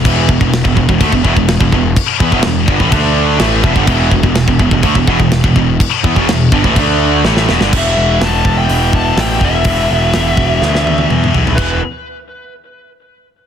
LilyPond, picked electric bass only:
\new Staff \with { instrumentName = "Picked electric bass" } { \clef bass \time 4/4 \key e \minor \tempo 4 = 125 e,,8 e,,16 e,,8 e,,16 e,,16 e,,16 d,16 e,,16 e,,16 e,,8 e,,16 e,,8 | r8 e,16 e,,16 e,,8 g,,16 a,,16 d,4 a,,8 e,,16 g,,16 | e,,8 e,,16 e,,8 e,,16 e,,16 e,,16 d,16 e,,16 e,,16 e,,8 e,,16 e,,8 | r8 e,16 e,,16 e,,8 g,,16 a,,16 d,4 a,,8 e,,16 g,,16 |
e,,8 e,,8 e,,8 e,,8 e,,4 a,,8 e,,8 | e,,8 e,,8 e,,8 e,,8 d,4 e,8 b,,8 | e,,8 r2. r8 | }